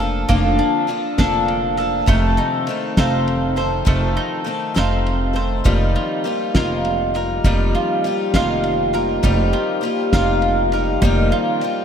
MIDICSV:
0, 0, Header, 1, 6, 480
1, 0, Start_track
1, 0, Tempo, 595829
1, 241, Time_signature, 6, 3, 24, 8
1, 9544, End_track
2, 0, Start_track
2, 0, Title_t, "Mandolin"
2, 0, Program_c, 0, 25
2, 0, Note_on_c, 0, 58, 78
2, 0, Note_on_c, 0, 62, 55
2, 0, Note_on_c, 0, 69, 55
2, 0, Note_on_c, 0, 77, 64
2, 221, Note_off_c, 0, 58, 0
2, 231, Note_on_c, 0, 58, 83
2, 463, Note_off_c, 0, 62, 0
2, 473, Note_on_c, 0, 62, 55
2, 945, Note_off_c, 0, 62, 0
2, 954, Note_on_c, 0, 62, 61
2, 956, Note_off_c, 0, 69, 0
2, 959, Note_off_c, 0, 77, 0
2, 959, Note_on_c, 0, 69, 58
2, 963, Note_on_c, 0, 77, 63
2, 1432, Note_off_c, 0, 69, 0
2, 1435, Note_on_c, 0, 69, 54
2, 1672, Note_off_c, 0, 58, 0
2, 1675, Note_on_c, 0, 57, 85
2, 1725, Note_off_c, 0, 62, 0
2, 1917, Note_on_c, 0, 63, 60
2, 1941, Note_off_c, 0, 69, 0
2, 1941, Note_off_c, 0, 77, 0
2, 2392, Note_off_c, 0, 63, 0
2, 2395, Note_on_c, 0, 63, 64
2, 2399, Note_on_c, 0, 72, 64
2, 2405, Note_on_c, 0, 77, 64
2, 2866, Note_off_c, 0, 72, 0
2, 2876, Note_on_c, 0, 72, 57
2, 3108, Note_off_c, 0, 57, 0
2, 3118, Note_on_c, 0, 57, 81
2, 3354, Note_off_c, 0, 63, 0
2, 3357, Note_on_c, 0, 63, 54
2, 3833, Note_off_c, 0, 72, 0
2, 3835, Note_off_c, 0, 63, 0
2, 3838, Note_on_c, 0, 63, 60
2, 3843, Note_on_c, 0, 72, 63
2, 3846, Note_off_c, 0, 77, 0
2, 3849, Note_on_c, 0, 77, 64
2, 4305, Note_off_c, 0, 72, 0
2, 4315, Note_on_c, 0, 72, 54
2, 4553, Note_off_c, 0, 57, 0
2, 4556, Note_on_c, 0, 55, 82
2, 4606, Note_off_c, 0, 72, 0
2, 4795, Note_off_c, 0, 63, 0
2, 4798, Note_on_c, 0, 65, 56
2, 5276, Note_off_c, 0, 65, 0
2, 5280, Note_on_c, 0, 65, 62
2, 5286, Note_on_c, 0, 70, 56
2, 5290, Note_off_c, 0, 77, 0
2, 5294, Note_on_c, 0, 77, 52
2, 5755, Note_off_c, 0, 70, 0
2, 5765, Note_on_c, 0, 70, 54
2, 5995, Note_off_c, 0, 55, 0
2, 6005, Note_on_c, 0, 55, 82
2, 6240, Note_off_c, 0, 65, 0
2, 6243, Note_on_c, 0, 65, 55
2, 6719, Note_off_c, 0, 70, 0
2, 6722, Note_off_c, 0, 65, 0
2, 6725, Note_on_c, 0, 65, 63
2, 6728, Note_on_c, 0, 70, 57
2, 6732, Note_off_c, 0, 77, 0
2, 6735, Note_on_c, 0, 77, 71
2, 7195, Note_off_c, 0, 70, 0
2, 7204, Note_on_c, 0, 70, 61
2, 7432, Note_off_c, 0, 55, 0
2, 7441, Note_on_c, 0, 55, 77
2, 7675, Note_off_c, 0, 65, 0
2, 7678, Note_on_c, 0, 65, 55
2, 8157, Note_off_c, 0, 70, 0
2, 8160, Note_off_c, 0, 65, 0
2, 8163, Note_on_c, 0, 65, 60
2, 8167, Note_on_c, 0, 70, 62
2, 8170, Note_off_c, 0, 77, 0
2, 8173, Note_on_c, 0, 77, 72
2, 8638, Note_off_c, 0, 70, 0
2, 8647, Note_on_c, 0, 70, 54
2, 8866, Note_off_c, 0, 55, 0
2, 8876, Note_on_c, 0, 55, 85
2, 9109, Note_off_c, 0, 65, 0
2, 9119, Note_on_c, 0, 65, 57
2, 9544, Note_off_c, 0, 55, 0
2, 9544, Note_off_c, 0, 65, 0
2, 9544, Note_off_c, 0, 70, 0
2, 9544, Note_off_c, 0, 77, 0
2, 9544, End_track
3, 0, Start_track
3, 0, Title_t, "French horn section"
3, 0, Program_c, 1, 60
3, 4562, Note_on_c, 1, 63, 64
3, 4562, Note_on_c, 1, 67, 81
3, 4564, Note_on_c, 1, 58, 66
3, 4566, Note_on_c, 1, 53, 77
3, 9544, Note_off_c, 1, 53, 0
3, 9544, Note_off_c, 1, 58, 0
3, 9544, Note_off_c, 1, 63, 0
3, 9544, Note_off_c, 1, 67, 0
3, 9544, End_track
4, 0, Start_track
4, 0, Title_t, "Twelve-string acoustic guitar"
4, 0, Program_c, 2, 25
4, 0, Note_on_c, 2, 69, 49
4, 11, Note_on_c, 2, 62, 42
4, 16, Note_on_c, 2, 58, 45
4, 23, Note_on_c, 2, 53, 44
4, 228, Note_off_c, 2, 53, 0
4, 232, Note_off_c, 2, 58, 0
4, 232, Note_on_c, 2, 41, 79
4, 232, Note_on_c, 2, 50, 87
4, 233, Note_off_c, 2, 62, 0
4, 236, Note_off_c, 2, 69, 0
4, 237, Note_on_c, 2, 53, 86
4, 242, Note_on_c, 2, 58, 81
4, 243, Note_on_c, 2, 62, 88
4, 246, Note_on_c, 2, 69, 97
4, 699, Note_off_c, 2, 53, 0
4, 701, Note_off_c, 2, 58, 0
4, 702, Note_on_c, 2, 53, 61
4, 711, Note_on_c, 2, 58, 71
4, 712, Note_off_c, 2, 62, 0
4, 716, Note_off_c, 2, 41, 0
4, 716, Note_off_c, 2, 50, 0
4, 722, Note_on_c, 2, 62, 71
4, 724, Note_off_c, 2, 69, 0
4, 728, Note_on_c, 2, 69, 74
4, 940, Note_off_c, 2, 69, 0
4, 948, Note_off_c, 2, 62, 0
4, 950, Note_off_c, 2, 58, 0
4, 950, Note_on_c, 2, 69, 71
4, 951, Note_off_c, 2, 53, 0
4, 957, Note_on_c, 2, 62, 66
4, 959, Note_on_c, 2, 58, 65
4, 960, Note_on_c, 2, 53, 66
4, 965, Note_on_c, 2, 50, 60
4, 967, Note_on_c, 2, 41, 56
4, 1429, Note_off_c, 2, 69, 0
4, 1432, Note_on_c, 2, 69, 53
4, 1436, Note_off_c, 2, 62, 0
4, 1440, Note_off_c, 2, 58, 0
4, 1443, Note_off_c, 2, 41, 0
4, 1443, Note_off_c, 2, 50, 0
4, 1445, Note_on_c, 2, 62, 48
4, 1450, Note_on_c, 2, 58, 47
4, 1455, Note_off_c, 2, 53, 0
4, 1458, Note_on_c, 2, 53, 41
4, 1662, Note_on_c, 2, 41, 79
4, 1670, Note_off_c, 2, 69, 0
4, 1670, Note_on_c, 2, 48, 82
4, 1673, Note_off_c, 2, 53, 0
4, 1676, Note_off_c, 2, 58, 0
4, 1676, Note_on_c, 2, 51, 91
4, 1679, Note_on_c, 2, 57, 85
4, 1679, Note_on_c, 2, 69, 92
4, 1680, Note_off_c, 2, 62, 0
4, 1683, Note_on_c, 2, 60, 93
4, 2139, Note_off_c, 2, 51, 0
4, 2149, Note_on_c, 2, 51, 75
4, 2151, Note_off_c, 2, 41, 0
4, 2153, Note_off_c, 2, 57, 0
4, 2155, Note_off_c, 2, 48, 0
4, 2157, Note_off_c, 2, 60, 0
4, 2160, Note_off_c, 2, 69, 0
4, 2162, Note_on_c, 2, 57, 73
4, 2167, Note_on_c, 2, 60, 74
4, 2178, Note_on_c, 2, 69, 69
4, 2390, Note_off_c, 2, 69, 0
4, 2393, Note_off_c, 2, 60, 0
4, 2394, Note_off_c, 2, 51, 0
4, 2396, Note_off_c, 2, 57, 0
4, 2400, Note_on_c, 2, 69, 78
4, 2402, Note_on_c, 2, 60, 74
4, 2405, Note_on_c, 2, 57, 60
4, 2412, Note_on_c, 2, 48, 61
4, 2412, Note_on_c, 2, 51, 63
4, 2417, Note_on_c, 2, 41, 63
4, 2859, Note_off_c, 2, 69, 0
4, 2869, Note_on_c, 2, 69, 53
4, 2871, Note_off_c, 2, 60, 0
4, 2881, Note_on_c, 2, 60, 52
4, 2883, Note_off_c, 2, 57, 0
4, 2884, Note_off_c, 2, 51, 0
4, 2886, Note_off_c, 2, 48, 0
4, 2888, Note_off_c, 2, 41, 0
4, 2893, Note_on_c, 2, 57, 44
4, 2894, Note_on_c, 2, 51, 41
4, 3100, Note_on_c, 2, 41, 93
4, 3103, Note_off_c, 2, 51, 0
4, 3103, Note_off_c, 2, 57, 0
4, 3107, Note_off_c, 2, 69, 0
4, 3108, Note_off_c, 2, 60, 0
4, 3111, Note_on_c, 2, 48, 85
4, 3113, Note_on_c, 2, 51, 88
4, 3113, Note_on_c, 2, 57, 93
4, 3117, Note_on_c, 2, 69, 92
4, 3118, Note_on_c, 2, 60, 90
4, 3571, Note_off_c, 2, 51, 0
4, 3580, Note_on_c, 2, 51, 66
4, 3583, Note_off_c, 2, 57, 0
4, 3589, Note_off_c, 2, 60, 0
4, 3590, Note_off_c, 2, 41, 0
4, 3592, Note_on_c, 2, 57, 66
4, 3596, Note_off_c, 2, 48, 0
4, 3596, Note_off_c, 2, 69, 0
4, 3599, Note_on_c, 2, 60, 69
4, 3606, Note_on_c, 2, 69, 75
4, 3813, Note_off_c, 2, 69, 0
4, 3818, Note_off_c, 2, 60, 0
4, 3820, Note_off_c, 2, 57, 0
4, 3822, Note_on_c, 2, 69, 74
4, 3823, Note_off_c, 2, 51, 0
4, 3828, Note_on_c, 2, 60, 68
4, 3830, Note_on_c, 2, 57, 64
4, 3833, Note_on_c, 2, 48, 62
4, 3833, Note_on_c, 2, 51, 58
4, 3840, Note_on_c, 2, 41, 65
4, 4287, Note_off_c, 2, 69, 0
4, 4293, Note_off_c, 2, 60, 0
4, 4297, Note_on_c, 2, 69, 51
4, 4303, Note_on_c, 2, 60, 49
4, 4307, Note_off_c, 2, 57, 0
4, 4314, Note_off_c, 2, 51, 0
4, 4316, Note_off_c, 2, 48, 0
4, 4316, Note_on_c, 2, 57, 46
4, 4320, Note_off_c, 2, 41, 0
4, 4323, Note_on_c, 2, 51, 40
4, 4539, Note_off_c, 2, 51, 0
4, 4545, Note_on_c, 2, 41, 81
4, 4548, Note_off_c, 2, 69, 0
4, 4549, Note_on_c, 2, 51, 86
4, 4551, Note_off_c, 2, 60, 0
4, 4551, Note_on_c, 2, 55, 89
4, 4554, Note_on_c, 2, 63, 77
4, 4555, Note_off_c, 2, 57, 0
4, 4559, Note_on_c, 2, 58, 85
4, 4559, Note_on_c, 2, 65, 90
4, 5017, Note_off_c, 2, 55, 0
4, 5026, Note_off_c, 2, 58, 0
4, 5026, Note_on_c, 2, 55, 66
4, 5033, Note_off_c, 2, 41, 0
4, 5035, Note_off_c, 2, 51, 0
4, 5035, Note_on_c, 2, 58, 67
4, 5041, Note_off_c, 2, 63, 0
4, 5045, Note_on_c, 2, 63, 72
4, 5050, Note_off_c, 2, 65, 0
4, 5053, Note_on_c, 2, 65, 70
4, 5264, Note_off_c, 2, 65, 0
4, 5271, Note_off_c, 2, 63, 0
4, 5273, Note_off_c, 2, 55, 0
4, 5274, Note_off_c, 2, 58, 0
4, 5274, Note_on_c, 2, 65, 67
4, 5281, Note_on_c, 2, 63, 67
4, 5284, Note_on_c, 2, 58, 68
4, 5285, Note_on_c, 2, 55, 59
4, 5290, Note_on_c, 2, 51, 62
4, 5295, Note_on_c, 2, 41, 53
4, 5750, Note_off_c, 2, 65, 0
4, 5754, Note_on_c, 2, 65, 49
4, 5762, Note_off_c, 2, 58, 0
4, 5763, Note_off_c, 2, 55, 0
4, 5763, Note_off_c, 2, 63, 0
4, 5765, Note_off_c, 2, 51, 0
4, 5766, Note_on_c, 2, 63, 47
4, 5768, Note_off_c, 2, 41, 0
4, 5771, Note_on_c, 2, 58, 47
4, 5777, Note_on_c, 2, 55, 39
4, 5988, Note_off_c, 2, 55, 0
4, 5992, Note_off_c, 2, 58, 0
4, 5996, Note_off_c, 2, 63, 0
4, 5996, Note_on_c, 2, 41, 88
4, 5996, Note_on_c, 2, 51, 91
4, 5997, Note_off_c, 2, 65, 0
4, 5998, Note_on_c, 2, 55, 78
4, 6002, Note_on_c, 2, 58, 87
4, 6006, Note_on_c, 2, 63, 91
4, 6014, Note_on_c, 2, 65, 87
4, 6469, Note_off_c, 2, 55, 0
4, 6475, Note_off_c, 2, 58, 0
4, 6478, Note_off_c, 2, 41, 0
4, 6478, Note_off_c, 2, 51, 0
4, 6479, Note_on_c, 2, 55, 67
4, 6484, Note_on_c, 2, 58, 66
4, 6492, Note_off_c, 2, 63, 0
4, 6495, Note_on_c, 2, 63, 73
4, 6497, Note_off_c, 2, 65, 0
4, 6501, Note_on_c, 2, 65, 78
4, 6706, Note_off_c, 2, 65, 0
4, 6712, Note_off_c, 2, 63, 0
4, 6714, Note_off_c, 2, 58, 0
4, 6716, Note_on_c, 2, 65, 73
4, 6717, Note_off_c, 2, 55, 0
4, 6722, Note_on_c, 2, 63, 76
4, 6723, Note_on_c, 2, 58, 67
4, 6727, Note_on_c, 2, 55, 68
4, 6730, Note_on_c, 2, 51, 65
4, 6735, Note_on_c, 2, 41, 64
4, 7192, Note_off_c, 2, 65, 0
4, 7195, Note_on_c, 2, 65, 51
4, 7200, Note_off_c, 2, 63, 0
4, 7202, Note_off_c, 2, 58, 0
4, 7204, Note_off_c, 2, 55, 0
4, 7204, Note_on_c, 2, 63, 50
4, 7205, Note_off_c, 2, 51, 0
4, 7208, Note_off_c, 2, 41, 0
4, 7211, Note_on_c, 2, 58, 45
4, 7218, Note_on_c, 2, 55, 40
4, 7431, Note_off_c, 2, 55, 0
4, 7433, Note_on_c, 2, 41, 84
4, 7436, Note_off_c, 2, 58, 0
4, 7437, Note_on_c, 2, 51, 93
4, 7438, Note_off_c, 2, 65, 0
4, 7440, Note_off_c, 2, 63, 0
4, 7440, Note_on_c, 2, 55, 84
4, 7446, Note_on_c, 2, 58, 92
4, 7448, Note_on_c, 2, 65, 104
4, 7450, Note_on_c, 2, 63, 91
4, 7893, Note_off_c, 2, 55, 0
4, 7903, Note_on_c, 2, 55, 69
4, 7906, Note_off_c, 2, 58, 0
4, 7916, Note_on_c, 2, 58, 69
4, 7917, Note_off_c, 2, 41, 0
4, 7918, Note_off_c, 2, 51, 0
4, 7918, Note_off_c, 2, 63, 0
4, 7921, Note_on_c, 2, 63, 73
4, 7927, Note_off_c, 2, 65, 0
4, 7933, Note_on_c, 2, 65, 73
4, 8151, Note_off_c, 2, 55, 0
4, 8152, Note_off_c, 2, 63, 0
4, 8154, Note_off_c, 2, 65, 0
4, 8158, Note_off_c, 2, 58, 0
4, 8162, Note_on_c, 2, 63, 70
4, 8164, Note_on_c, 2, 65, 78
4, 8169, Note_on_c, 2, 55, 70
4, 8170, Note_on_c, 2, 58, 62
4, 8174, Note_on_c, 2, 51, 60
4, 8179, Note_on_c, 2, 41, 63
4, 8633, Note_off_c, 2, 65, 0
4, 8637, Note_on_c, 2, 65, 50
4, 8643, Note_off_c, 2, 58, 0
4, 8643, Note_off_c, 2, 63, 0
4, 8645, Note_off_c, 2, 55, 0
4, 8646, Note_on_c, 2, 63, 56
4, 8647, Note_off_c, 2, 51, 0
4, 8650, Note_off_c, 2, 41, 0
4, 8652, Note_on_c, 2, 58, 43
4, 8660, Note_on_c, 2, 55, 48
4, 8878, Note_off_c, 2, 65, 0
4, 8880, Note_off_c, 2, 55, 0
4, 8883, Note_off_c, 2, 63, 0
4, 8884, Note_on_c, 2, 41, 84
4, 8886, Note_off_c, 2, 58, 0
4, 8889, Note_on_c, 2, 51, 88
4, 8889, Note_on_c, 2, 55, 88
4, 8895, Note_on_c, 2, 58, 87
4, 8899, Note_on_c, 2, 63, 98
4, 8902, Note_on_c, 2, 65, 89
4, 9346, Note_off_c, 2, 55, 0
4, 9354, Note_off_c, 2, 58, 0
4, 9355, Note_on_c, 2, 55, 64
4, 9362, Note_off_c, 2, 41, 0
4, 9363, Note_on_c, 2, 58, 60
4, 9365, Note_off_c, 2, 51, 0
4, 9365, Note_off_c, 2, 63, 0
4, 9371, Note_off_c, 2, 65, 0
4, 9375, Note_on_c, 2, 63, 69
4, 9380, Note_on_c, 2, 65, 68
4, 9544, Note_off_c, 2, 55, 0
4, 9544, Note_off_c, 2, 58, 0
4, 9544, Note_off_c, 2, 63, 0
4, 9544, Note_off_c, 2, 65, 0
4, 9544, End_track
5, 0, Start_track
5, 0, Title_t, "Upright bass"
5, 0, Program_c, 3, 32
5, 0, Note_on_c, 3, 29, 91
5, 208, Note_off_c, 3, 29, 0
5, 235, Note_on_c, 3, 29, 97
5, 466, Note_off_c, 3, 29, 0
5, 955, Note_on_c, 3, 29, 84
5, 1645, Note_off_c, 3, 29, 0
5, 1671, Note_on_c, 3, 29, 93
5, 1903, Note_off_c, 3, 29, 0
5, 2392, Note_on_c, 3, 29, 96
5, 3084, Note_off_c, 3, 29, 0
5, 3116, Note_on_c, 3, 29, 102
5, 3346, Note_off_c, 3, 29, 0
5, 3838, Note_on_c, 3, 29, 88
5, 4527, Note_off_c, 3, 29, 0
5, 4557, Note_on_c, 3, 29, 97
5, 4787, Note_off_c, 3, 29, 0
5, 5277, Note_on_c, 3, 29, 84
5, 5967, Note_off_c, 3, 29, 0
5, 5997, Note_on_c, 3, 29, 93
5, 6227, Note_off_c, 3, 29, 0
5, 6717, Note_on_c, 3, 29, 88
5, 7406, Note_off_c, 3, 29, 0
5, 7438, Note_on_c, 3, 29, 99
5, 7667, Note_off_c, 3, 29, 0
5, 8162, Note_on_c, 3, 29, 95
5, 8849, Note_off_c, 3, 29, 0
5, 8875, Note_on_c, 3, 29, 100
5, 9105, Note_off_c, 3, 29, 0
5, 9544, End_track
6, 0, Start_track
6, 0, Title_t, "Drums"
6, 0, Note_on_c, 9, 51, 50
6, 80, Note_off_c, 9, 51, 0
6, 237, Note_on_c, 9, 36, 88
6, 237, Note_on_c, 9, 51, 65
6, 318, Note_off_c, 9, 36, 0
6, 318, Note_off_c, 9, 51, 0
6, 474, Note_on_c, 9, 51, 50
6, 554, Note_off_c, 9, 51, 0
6, 716, Note_on_c, 9, 51, 53
6, 797, Note_off_c, 9, 51, 0
6, 953, Note_on_c, 9, 38, 101
6, 953, Note_on_c, 9, 51, 71
6, 956, Note_on_c, 9, 36, 71
6, 1033, Note_off_c, 9, 38, 0
6, 1033, Note_off_c, 9, 51, 0
6, 1036, Note_off_c, 9, 36, 0
6, 1194, Note_on_c, 9, 51, 53
6, 1275, Note_off_c, 9, 51, 0
6, 1428, Note_on_c, 9, 51, 57
6, 1509, Note_off_c, 9, 51, 0
6, 1669, Note_on_c, 9, 51, 72
6, 1673, Note_on_c, 9, 36, 98
6, 1750, Note_off_c, 9, 51, 0
6, 1753, Note_off_c, 9, 36, 0
6, 1911, Note_on_c, 9, 51, 55
6, 1991, Note_off_c, 9, 51, 0
6, 2150, Note_on_c, 9, 51, 56
6, 2231, Note_off_c, 9, 51, 0
6, 2395, Note_on_c, 9, 36, 66
6, 2395, Note_on_c, 9, 38, 91
6, 2395, Note_on_c, 9, 51, 66
6, 2475, Note_off_c, 9, 38, 0
6, 2475, Note_off_c, 9, 51, 0
6, 2476, Note_off_c, 9, 36, 0
6, 2639, Note_on_c, 9, 51, 54
6, 2719, Note_off_c, 9, 51, 0
6, 2880, Note_on_c, 9, 51, 49
6, 2960, Note_off_c, 9, 51, 0
6, 3116, Note_on_c, 9, 36, 97
6, 3118, Note_on_c, 9, 51, 68
6, 3197, Note_off_c, 9, 36, 0
6, 3199, Note_off_c, 9, 51, 0
6, 3357, Note_on_c, 9, 51, 48
6, 3438, Note_off_c, 9, 51, 0
6, 3598, Note_on_c, 9, 51, 47
6, 3679, Note_off_c, 9, 51, 0
6, 3836, Note_on_c, 9, 38, 92
6, 3836, Note_on_c, 9, 51, 66
6, 3916, Note_off_c, 9, 38, 0
6, 3916, Note_off_c, 9, 51, 0
6, 4080, Note_on_c, 9, 51, 54
6, 4161, Note_off_c, 9, 51, 0
6, 4317, Note_on_c, 9, 51, 50
6, 4398, Note_off_c, 9, 51, 0
6, 4554, Note_on_c, 9, 51, 71
6, 4555, Note_on_c, 9, 36, 88
6, 4635, Note_off_c, 9, 51, 0
6, 4636, Note_off_c, 9, 36, 0
6, 4799, Note_on_c, 9, 51, 51
6, 4880, Note_off_c, 9, 51, 0
6, 5039, Note_on_c, 9, 51, 50
6, 5119, Note_off_c, 9, 51, 0
6, 5273, Note_on_c, 9, 38, 98
6, 5273, Note_on_c, 9, 51, 69
6, 5275, Note_on_c, 9, 36, 65
6, 5353, Note_off_c, 9, 38, 0
6, 5353, Note_off_c, 9, 51, 0
6, 5356, Note_off_c, 9, 36, 0
6, 5516, Note_on_c, 9, 51, 57
6, 5596, Note_off_c, 9, 51, 0
6, 5758, Note_on_c, 9, 51, 58
6, 5839, Note_off_c, 9, 51, 0
6, 5997, Note_on_c, 9, 36, 89
6, 5997, Note_on_c, 9, 51, 68
6, 6077, Note_off_c, 9, 36, 0
6, 6078, Note_off_c, 9, 51, 0
6, 6238, Note_on_c, 9, 51, 51
6, 6319, Note_off_c, 9, 51, 0
6, 6478, Note_on_c, 9, 51, 51
6, 6559, Note_off_c, 9, 51, 0
6, 6717, Note_on_c, 9, 38, 98
6, 6717, Note_on_c, 9, 51, 72
6, 6718, Note_on_c, 9, 36, 67
6, 6797, Note_off_c, 9, 38, 0
6, 6797, Note_off_c, 9, 51, 0
6, 6799, Note_off_c, 9, 36, 0
6, 6957, Note_on_c, 9, 51, 55
6, 7038, Note_off_c, 9, 51, 0
6, 7198, Note_on_c, 9, 51, 53
6, 7279, Note_off_c, 9, 51, 0
6, 7437, Note_on_c, 9, 51, 62
6, 7440, Note_on_c, 9, 36, 87
6, 7517, Note_off_c, 9, 51, 0
6, 7521, Note_off_c, 9, 36, 0
6, 7679, Note_on_c, 9, 51, 52
6, 7760, Note_off_c, 9, 51, 0
6, 7923, Note_on_c, 9, 51, 52
6, 8004, Note_off_c, 9, 51, 0
6, 8158, Note_on_c, 9, 38, 95
6, 8158, Note_on_c, 9, 51, 71
6, 8159, Note_on_c, 9, 36, 73
6, 8238, Note_off_c, 9, 38, 0
6, 8238, Note_off_c, 9, 51, 0
6, 8240, Note_off_c, 9, 36, 0
6, 8394, Note_on_c, 9, 51, 55
6, 8474, Note_off_c, 9, 51, 0
6, 8636, Note_on_c, 9, 51, 56
6, 8716, Note_off_c, 9, 51, 0
6, 8875, Note_on_c, 9, 51, 67
6, 8878, Note_on_c, 9, 36, 93
6, 8956, Note_off_c, 9, 51, 0
6, 8959, Note_off_c, 9, 36, 0
6, 9118, Note_on_c, 9, 51, 51
6, 9198, Note_off_c, 9, 51, 0
6, 9356, Note_on_c, 9, 51, 55
6, 9436, Note_off_c, 9, 51, 0
6, 9544, End_track
0, 0, End_of_file